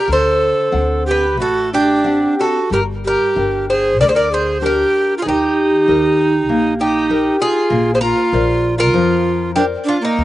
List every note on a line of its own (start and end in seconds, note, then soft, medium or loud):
0.00 0.10 G4 medium
0.00 0.12 A#4 medium
0.08 0.51 D2 medium
0.08 0.71 D3 medium
0.08 1.03 A4 medium
0.13 1.10 C5 medium
0.72 1.38 D2 medium
0.72 1.25 C4 soft
0.72 1.25 D4 soft
0.72 1.25 F#5 soft
1.06 1.37 G4 medium
1.11 1.41 B4 medium
1.37 2.25 A1 medium
1.37 2.02 A3 medium
1.37 1.70 F#4 medium
1.42 1.71 A4 medium
1.73 2.35 D4 medium
1.73 2.41 G4 medium
2.04 2.58 C4 soft
2.04 2.58 D4 soft
2.04 2.58 F#5 soft
2.39 2.70 F#4 medium
2.39 2.73 A4 medium
2.70 3.14 G1 medium
2.70 3.35 G3 medium
2.70 2.80 G4 medium
2.70 2.82 A#4 medium
3.05 3.66 G4 medium
3.05 3.67 A#4 medium
3.36 4.01 G1 medium
3.36 3.87 D4 soft
3.36 3.88 A#4 soft
3.36 3.88 G5 soft
3.70 3.99 G#4 medium
3.70 4.00 C5 medium
3.99 4.83 D2 medium
3.99 4.61 D3 medium
3.99 4.07 A#4 medium
3.99 4.08 D5 medium
4.08 4.14 G#4 medium
4.08 4.15 C5 medium
4.14 4.31 A#4 medium
4.14 4.33 D5 medium
4.31 4.60 G#4 medium
4.31 4.65 C5 medium
4.61 5.13 D4 soft
4.61 5.14 G4 medium
4.61 5.13 G4 soft
4.61 5.13 A#4 medium
4.66 5.17 A#4 medium
5.18 5.25 F4 medium
5.22 5.86 D#3 medium
5.22 6.74 D#4 medium
5.22 5.28 G#4 medium
5.27 5.67 D#2 medium
5.27 6.80 G4 medium
5.88 6.48 D#2 medium
5.88 6.36 D#4 soft
5.88 6.36 G4 soft
5.88 6.37 A#4 soft
6.48 7.28 A#1 medium
6.48 7.08 A#3 medium
6.80 7.37 D#4 medium
6.80 7.41 G4 medium
7.09 7.59 D#4 soft
7.09 7.59 A#4 medium
7.09 7.59 G5 soft
7.40 7.91 F4 medium
7.40 7.95 G#4 medium
7.70 8.11 A#1 medium
7.70 8.30 A#3 medium
7.94 8.01 G#4 medium
7.94 8.00 C5 medium
8.01 8.75 F4 medium
8.01 8.79 A#4 medium
8.33 8.93 A#1 medium
8.33 8.82 A#4 soft
8.33 8.82 C5 soft
8.33 8.83 D5 medium
8.78 9.51 F4 medium
8.78 9.52 A#4 medium
8.93 9.74 F2 medium
8.93 9.54 F3 medium
9.56 9.63 D4 medium
9.56 9.64 G4 medium
9.56 10.06 A#4 soft
9.56 10.06 C5 soft
9.56 10.06 D5 medium
9.84 10.00 D4 medium
9.88 10.04 F4 medium
10.01 10.24 A#3 medium
10.01 10.24 D#4 medium
10.18 10.24 D#2 medium
10.18 10.24 D#3 medium